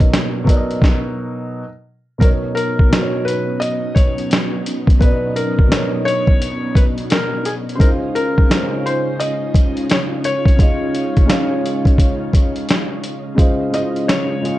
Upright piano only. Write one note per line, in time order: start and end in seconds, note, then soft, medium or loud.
0.00 0.44 B2 medium
0.00 0.46 F#3 medium
0.00 0.47 D#4 medium
0.00 0.48 A#4 medium
0.00 0.84 C#5 medium
0.00 0.40 D#5 medium
0.44 1.62 B2 medium
0.44 1.63 F#3 medium
0.44 1.63 D#4 medium
0.48 1.64 A#4 medium
0.48 0.57 D5 medium
0.56 1.68 D#5 loud
2.18 2.80 B2 medium
2.18 2.81 F#3 medium
2.18 2.82 D#4 medium
2.23 2.82 A#4 medium
2.23 2.83 C#5 medium
2.89 4.06 B2 medium
2.89 4.07 F#3 medium
2.89 4.08 D#4 medium
2.93 4.08 F#4 medium
2.93 3.02 B4 medium
3.02 4.13 C#5 medium
4.99 5.60 B2 medium
4.99 5.61 F#3 medium
4.99 5.62 D#4 medium
5.04 5.63 B4 medium
5.04 5.11 D5 medium
5.12 5.67 D#5 medium
5.68 6.85 B2 medium
5.68 6.86 F#3 medium
5.68 5.79 D4 soft
5.72 6.87 A#4 medium
5.72 6.88 C#5 medium
5.77 6.90 D#4 medium
7.77 8.39 C#3 medium
7.77 8.39 G#3 medium
7.77 8.40 D#4 medium
7.81 7.89 E4 medium
7.81 8.42 C5 medium
7.88 8.44 F4 medium
8.48 9.65 C#3 medium
8.48 9.66 G#3 medium
8.48 9.66 D#4 medium
8.53 9.67 F4 medium
8.53 8.60 C5 medium
8.60 9.71 C#4 medium
10.56 11.18 C#3 medium
10.56 11.18 G#3 medium
10.56 11.19 D#4 medium
10.60 11.20 F4 medium
10.60 11.21 D#5 medium
11.25 12.43 C#3 medium
11.25 12.44 G#3 medium
11.25 12.44 D#4 medium
11.30 12.45 F4 medium
11.30 12.46 C#5 medium
13.35 13.67 C#3 medium
13.35 13.67 G#3 medium
13.35 13.68 F4 medium
13.39 13.69 C5 medium
13.39 13.70 D#5 medium
13.70 14.32 C#3 medium
13.70 14.33 G#3 medium
13.70 13.81 E4 medium
13.75 14.34 C5 medium
13.75 14.35 D#5 medium
13.79 14.36 F4 medium
14.41 14.59 C#3 medium
14.41 14.59 G#3 medium
14.41 14.59 F4 medium
14.45 14.59 G#4 medium
14.45 14.59 D#5 medium